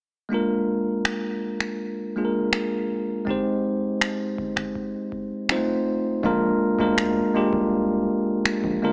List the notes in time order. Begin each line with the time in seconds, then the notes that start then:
0.29 G#3 A#3 D4 F4
0.34 A#4
1.05 finger snap
1.60 finger snap
2.16 G#3 A#3 D4 F4 G#4
2.25 A#4
2.53 finger snap
3.25 G#3 C4 D#4 G4, kick
3.31 C5
4.01 finger snap
4.38 kick
4.56 finger snap, kick
4.75 kick
5.12 kick
5.49 G3 C4 D#4 F4 C5, finger snap
5.56 A3
6.23 A#1 G#3 A#3 D4 F4 A#4, kick
6.79 D2 G#3 A#3 D4 F4 A#4, kick
6.98 finger snap
7.34 C2 G#3 A#3 D4 F4 G4
7.53 C2, kick
8.45 finger snap
8.64 A#1, kick
8.82 G1 G#3 A#3 D4 F4 A#4